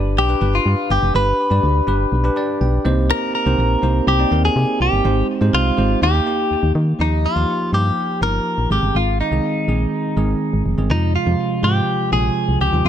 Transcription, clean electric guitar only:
0.18 G4
0.55 F4
0.91 G4
1.16 B4
3.11 A#4
3.35 A#4
4.08 G4
4.45 G#4
4.82 G4
5.55 F4
6.03 G4
7.01 D#4
7.26 F4
7.74 G4
8.23 A#4
8.72 G4
8.96 F4
9.21 D#4
10.91 D#4
11.15 F4
11.64 G4
12.13 G#4
12.61 G4
12.86 F4

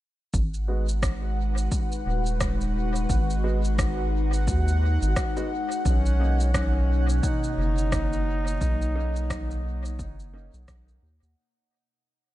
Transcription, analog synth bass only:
0.34 G#1
2.06 D#1
3.10 G#1
4.48 D#2
5.02 G#1
5.85 B1
7.58 F#1
8.61 B1
9.99 F#1
10.54 B1
10.68 B1
11.03 D#2
11.23 D#2

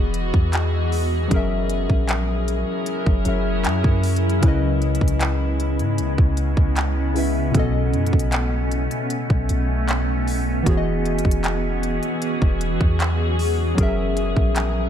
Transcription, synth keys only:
Already playing: E3 B3 F#4 G#4 D#5
1.28 F#3 C#4 G#4
1.34 A#4 E5
3.25 F#3 C#4 G#4 A#4 E5
4.40 C#3 C#4 E4
4.46 B4 D#5
7.14 C#3 C#4 E4 B4
7.18 E5
7.52 B2 B3 C#4
7.57 A4 D#5
10.63 E3 B3
10.67 F#4 G#4 C#5
10.77 D#5
13.75 F#3 C#4 G#4
13.81 A#4 E5

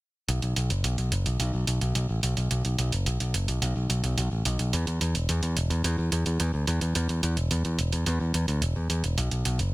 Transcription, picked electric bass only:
0.29 B1
0.42 B1
0.56 B1
0.70 F#1
0.84 B1
0.98 B1
1.12 F#1
1.26 B1
1.40 B1
1.54 B1
1.67 B1
1.81 B1
1.95 B1
2.09 A1
2.23 B1
2.37 B1
2.51 B1
2.65 B1
2.79 B1
2.93 F#1
3.06 B1
3.20 B1
3.34 F#1
3.48 B1
3.62 B1
3.76 B1
3.89 B1
4.04 B1
4.18 B1
4.31 A1
4.46 B1
4.59 B1
4.74 E2
4.87 E2
5.01 E2
5.15 E1
5.29 E2
5.43 E2
5.57 E1
5.70 E2
5.84 E2
5.98 E2
6.12 E2
6.26 E2
6.40 E2
6.54 D2
6.68 E2
6.82 E2
6.96 E2
7.09 E2
7.23 E2
7.37 E1
7.51 E2
7.65 E2
7.79 E1
7.93 E2
8.07 E2
8.20 E2
8.34 E2
8.48 D2
8.62 E1
8.76 E2
8.90 E2
9.04 E1
9.18 B1
9.32 B1
9.46 B1
9.59 F#1

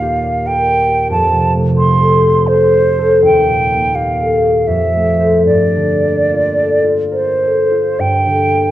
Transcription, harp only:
Already playing: D#2 A#2 A#3 F4 A#4 D5
0.02 G4
0.23 D5
0.45 A#4
0.66 D5
0.88 G4
1.10 F2
1.33 C3
1.54 A3
1.76 G4
1.99 A4
2.21 C5
2.45 A4
2.71 C5
2.99 A4
3.23 D#2
3.48 A#2
3.72 A#3
3.95 G4
4.20 A4
4.44 D5
4.67 F2
4.95 A3
5.19 A4 C5
5.46 G2
5.76 D3
6.03 A#3
6.33 F4
6.57 A4
6.84 F4
7.11 A#4
7.42 A4
7.71 F4
7.99 G2
8.26 D3
8.52 A#3

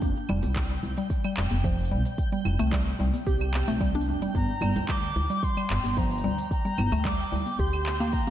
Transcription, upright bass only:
0.02 F1
0.30 F1
0.43 C2
0.84 C2
1.38 F1
1.52 F1
1.92 C2
2.46 F1
2.60 C2
3.00 C2
3.27 C2
3.68 C2
4.08 F1
4.35 G1
4.62 G1
4.76 D2
5.16 D2
5.70 G1
5.84 G1
6.24 D2
6.78 G1
6.92 D2
7.32 D2
7.59 D2

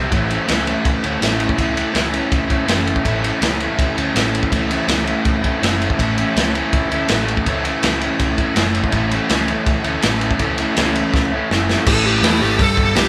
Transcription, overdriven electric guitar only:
Already playing: C3 G3 C4
0.10 A2 E3 A3 C#4
0.14 E4
0.29 C#4 E4
0.33 A3
0.46 E3 A3 C#4
0.51 E4
0.65 C#4 E4
0.69 A3
1.03 C#4 E4
1.07 A3
1.21 A2 E3 A3 C#4
1.25 E4
1.56 A2 E3 A3 C#4
1.61 E4
1.74 C#4 E4
1.79 A3
1.92 E3 A3 C#4 E4
2.11 C#4 E4
2.15 A3
2.47 C#4 E4
2.52 A3
2.65 A2 E3 A3 C#4
2.69 E4
3.03 A2 E3 A3 C#4 E4
3.21 C#4 E4
3.25 A3
3.40 E3 A3 C#4
3.44 E4
3.59 C#4 E4
3.63 A3
3.95 C#4 E4
4.00 A3
4.15 A2 E3 A3 C#4 E4
4.51 A2 E3 A3 C#4 E4
4.68 A3 C#4 E4
4.87 E3 A3 C#4 E4
5.04 C#4 E4
5.09 A3
5.42 C#4 E4
5.46 A3
5.60 A2 E3 A3 C#4
5.64 E4
5.97 A2 E3 A3 C#4 E4
6.17 C#4 E4
6.21 A3
6.36 E3 A3 C#4
6.40 E4
6.54 C#4 E4
6.58 A3
6.90 C#4 E4
6.94 A3
7.08 A2 E3 A3 C#4
7.13 E4
7.46 A2 E3 A3 C#4 E4
7.64 C#4 E4
7.69 A3
7.83 E3 A3 C#4
7.88 E4
8.01 C#4 E4
8.05 A3
8.38 A3 C#4 E4
8.55 A2 E3 A3 C#4 E4
8.91 A2 E3 A3 C#4 E4
9.11 A3 C#4 E4
9.29 E3 A3 C#4
9.34 E4
9.49 A3 C#4 E4
9.83 C#4 E4
9.88 A3
10.03 A2 E3 A3 C#4
10.07 E4
10.39 A2 E3 A3 C#4 E4
10.58 C#4 E4
10.62 A3
10.76 E3 A3 C#4
10.80 E4
10.94 C#4 E4
10.98 A3
11.31 C#4 E4
11.36 A3
11.50 A2 E3 A3 C#4 E4
11.87 A2 E3 A3
12.05 A2 E3 A3
12.23 A2 E3 A3
12.41 A2 E3 A3
12.60 G2 D3 G3
12.76 G2 D3 G3
12.95 G2 D3 G3

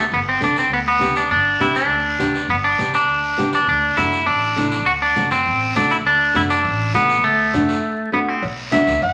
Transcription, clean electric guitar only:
0.14 B3
0.29 C4
0.44 D4
0.59 C4
0.73 B3
0.88 B3
1.17 D4
1.31 D4
1.61 E4
1.76 D4
2.50 B3
2.64 D4
2.95 D4
3.55 D4
3.69 D4
3.97 E4
4.26 D4
4.86 F#4
5.02 D4
5.32 C4
5.77 D4
5.91 E4
6.07 D4
6.36 E4
6.50 D4
6.95 B3
7.24 A3
8.14 B3
8.28 C4

